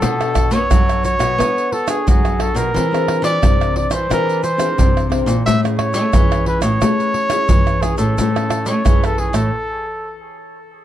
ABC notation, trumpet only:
X:1
M:4/4
L:1/16
Q:1/4=88
K:A
V:1 name="Trumpet"
A3 c3 c4 A G G2 A _B- | _B3 d3 d ^B _B2 ^B4 z2 | e2 c4 B c6- c G A- | A3 c2 A G A4- A z4 |]